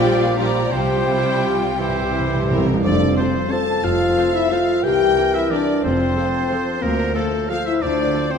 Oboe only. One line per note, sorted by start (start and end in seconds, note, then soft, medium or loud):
0.00 0.37 D5 medium
0.39 0.73 D5 medium
0.71 1.62 C5 medium
1.79 2.66 C5 medium
2.83 3.15 D5 medium
3.17 3.53 C5 medium
3.52 3.86 A5 medium
3.84 4.34 F5 medium
4.35 4.54 E5 medium
4.53 4.85 F5 medium
4.84 5.35 G5 medium
5.34 5.52 E5 medium
5.51 5.83 D5 medium
5.84 6.84 C5 medium
6.83 7.14 A#4 medium
7.15 7.51 A4 medium
7.50 7.68 F5 medium
7.66 7.83 E5 medium
7.82 8.32 D5 medium
8.31 8.38 C5 medium